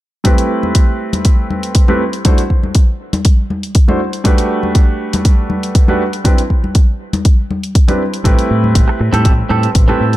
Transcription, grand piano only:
0.24 A3 C4 E4 G4 B4
1.88 A3 C4 E4 G4 B4
2.25 A3 D4 E4 F#4 C5
3.88 A3 D4 E4 F#4 C5
4.24 A3 D4 F#4 G4 B4
5.88 A3 D4 F#4 G4 B4
6.24 C4 D4 E4 G4 B4
7.88 C4 D4 E4 G4 B4
8.24 A3 C4 E4 G4 B4
9.88 A3 C4 E4 G4 B4

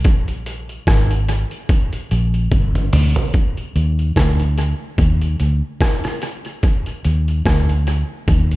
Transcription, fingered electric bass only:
0.05 A#1
0.88 G#1
2.12 A#1
2.52 G1
2.93 D2
3.76 D#2
4.17 D2
4.99 D#2
5.40 D2
7.05 D#2
7.46 D2
8.28 D#2

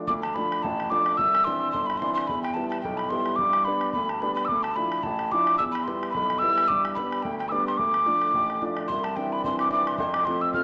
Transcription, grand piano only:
0.10 D2
0.37 F3 A3 D4
0.64 A1
0.91 F3 A3 D4
1.20 C2
1.46 E3 C4 D4
1.74 G1
2.02 E3 C4 D4
2.29 E2
2.56 G3 B3 E4
2.85 B1
3.11 G3 B3 E4
3.40 G2
3.67 G3 B3 D4
3.96 D2
4.22 G3 B3 D4
4.51 D2
4.77 F3 D4 E4
5.05 A1
5.33 F3 D4 E4
5.59 E2
5.87 G3 B3 E4
6.16 B1
6.42 G3 B3 E4
6.71 G2
6.98 G3 B3 D4
7.25 D2
7.52 G3 B3 D4
7.79 D2
8.06 F3 A3 D4
8.34 A1
8.62 F3 A3 D4
8.91 C2
9.16 E3 C4 D4
9.45 E3 C4 D4
9.72 E3 C4 D4
10.00 F2
10.28 F3 A3 C4
10.55 F3 A3 C4

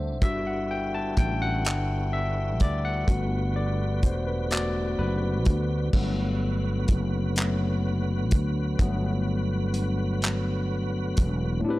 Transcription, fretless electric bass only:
Already playing: D2
0.22 G1
1.18 A1
1.66 G1
2.61 D2
3.09 G1
4.03 E1
4.99 F#1
5.47 D2
5.94 G1
6.89 F#1
8.33 D2
8.80 G1
11.18 E1

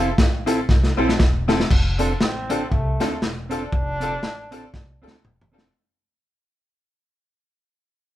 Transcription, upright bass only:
Already playing: F1
0.69 C2
0.98 A#1
1.20 E1
1.71 F1
2.22 A1
2.72 C2
3.22 E1
3.73 F1
4.23 A1
4.74 C2
5.03 D2
5.25 E1

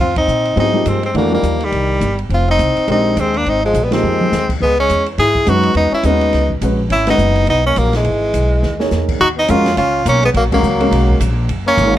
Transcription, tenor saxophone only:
0.01 F4
0.18 D#4
0.60 D#4
0.88 C4
1.06 C4
1.18 A#3
1.34 A#3
1.64 G3
2.34 F4
2.51 D#4
2.92 D#4
3.20 C4
3.37 D4
3.49 D#4
3.65 G#3
3.84 B3
3.94 C4
4.62 B3
4.80 C#4
5.19 G#4
5.49 F#4
5.77 D#4
5.94 E4
6.06 D#4
6.92 E4
7.10 D#4
7.50 D#4
7.66 C#4
7.78 A#3
7.96 G#3
9.21 F#4
9.39 D#4
9.50 F4
9.78 F4
10.09 C#4
10.25 B3
10.37 A#3
10.54 A#3
11.68 C#4

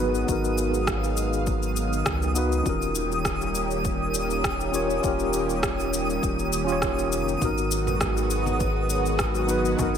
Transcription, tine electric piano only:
Already playing: B3 D#4
0.00 F#4 B4
0.24 B3 D#4
0.29 F#4 A#4
2.34 B3 D#4 F#4 B4
2.61 C#4 F4
2.67 G4 A#4
4.71 C#4 F4 G4 C#5
5.00 C#4 F4
5.05 G4 A#4
6.64 C#4 F4
6.70 G4 C#5
7.37 B3 D#4
7.43 F#4 A#4
9.47 B3 D#4 F#4 B4
9.75 B3 D#4
9.80 F#4 A#4

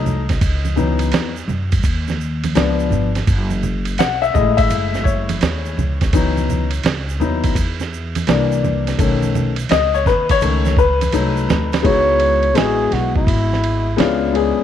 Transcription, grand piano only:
Already playing: F#3 A3 D#4 D#5
0.76 E3 F#3 B3 D#4
2.55 F3 B3 D4
3.99 F#5
4.22 E5
4.34 G#3 A3 E4 D#5
4.57 E5
5.04 C#5
6.13 E3 F#3 B3 D#4
7.20 F#3 B3 D#4 E4
8.27 E3 A#3 D4
8.99 D#3 A3 C#4
9.71 D#5
9.94 C#5
10.07 B4
10.31 C#5
10.42 D#3 A3 C#4
10.79 B4
11.13 F#3 A3 D#4
11.83 G#3 B3 D#4 E4 F#4
12.54 G#3 B3 E4 F#4 D#5
13.97 G#3 B3 C#4 D4 F4
14.33 G#3 B3 C#4 D4 G#4

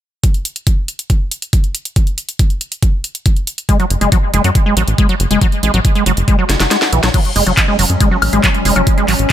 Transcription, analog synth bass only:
3.90 F#1
4.01 F#1
4.34 F#1
4.44 F#2
4.77 A1
4.88 A1
5.20 F#1
5.31 F#1
5.63 A1
5.74 A1
6.06 F#1
6.17 F#1
6.49 F#1
6.60 F#1
6.93 B1
7.03 B1
7.36 F#1
7.47 F#1
7.79 F#1
7.90 F#2
8.22 A1
8.33 A1
8.65 F#1
8.76 F#1
9.08 A1
9.19 A1

